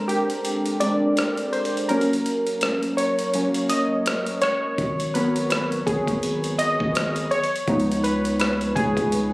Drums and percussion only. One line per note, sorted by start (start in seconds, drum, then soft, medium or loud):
0.09 closed hi-hat medium
0.30 closed hi-hat medium
0.45 closed hi-hat medium
0.66 closed hi-hat soft
0.81 closed hi-hat medium
1.17 cross-stick loud
1.17 closed hi-hat medium
1.37 closed hi-hat soft
1.53 closed hi-hat soft
1.65 closed hi-hat soft
1.77 closed hi-hat soft
1.89 closed hi-hat medium
2.01 closed hi-hat medium
2.13 closed hi-hat medium
2.26 closed hi-hat medium
2.47 closed hi-hat medium
2.61 cross-stick loud
2.61 closed hi-hat medium
2.83 closed hi-hat soft
2.98 closed hi-hat medium
3.19 closed hi-hat medium
3.34 closed hi-hat medium
3.54 closed hi-hat medium
3.70 closed hi-hat medium
4.06 cross-stick loud
4.06 closed hi-hat medium
4.26 closed hi-hat medium
4.42 cross-stick medium
4.42 closed hi-hat medium
4.78 kick loud
4.78 closed hi-hat medium
5.00 closed hi-hat medium
5.15 closed hi-hat medium
5.36 closed hi-hat medium
5.50 cross-stick loud
5.50 closed hi-hat medium
5.72 closed hi-hat soft
5.87 kick loud
5.87 closed hi-hat medium
6.07 kick medium
6.07 closed hi-hat medium
6.23 closed hi-hat medium
6.44 closed hi-hat soft
6.59 closed hi-hat medium
6.80 kick medium
6.95 cross-stick loud
6.95 closed hi-hat medium
7.16 closed hi-hat soft
7.32 closed hi-hat soft
7.44 closed hi-hat soft
7.56 closed hi-hat soft
7.68 kick loud
7.68 closed hi-hat soft
7.80 closed hi-hat medium
7.92 closed hi-hat medium
8.04 closed hi-hat medium
8.25 closed hi-hat medium
8.40 cross-stick loud
8.40 closed hi-hat medium
8.61 closed hi-hat soft
8.76 kick medium
8.76 closed hi-hat medium
8.97 kick medium
8.97 closed hi-hat medium
9.12 closed hi-hat medium